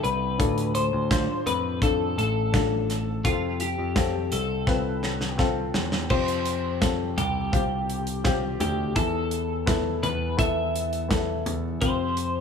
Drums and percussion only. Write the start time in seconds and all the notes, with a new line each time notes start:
0.04 closed hi-hat
0.40 kick, closed hi-hat
0.58 closed hi-hat
0.75 closed hi-hat
1.11 kick, snare, closed hi-hat
1.47 closed hi-hat
1.82 kick, closed hi-hat
2.19 closed hi-hat
2.54 kick, snare, closed hi-hat
2.90 snare, closed hi-hat
3.25 kick, closed hi-hat
3.60 closed hi-hat
3.96 kick, snare, closed hi-hat
4.32 closed hi-hat
4.67 kick, snare
5.03 snare
5.21 snare
5.39 kick, snare
5.74 snare
5.92 snare
6.10 kick, crash
6.28 closed hi-hat
6.45 closed hi-hat
6.82 kick, snare, closed hi-hat
7.18 closed hi-hat, floor tom
7.53 kick, closed hi-hat
7.89 closed hi-hat
8.07 closed hi-hat
8.25 kick, snare, closed hi-hat
8.60 closed hi-hat, floor tom
8.96 kick, closed hi-hat
9.31 closed hi-hat
9.67 kick, snare, closed hi-hat
10.03 closed hi-hat, floor tom
10.39 kick, closed hi-hat
10.76 closed hi-hat
10.93 closed hi-hat
11.11 kick, snare, closed hi-hat
11.46 closed hi-hat, floor tom
11.82 kick, closed hi-hat
12.17 closed hi-hat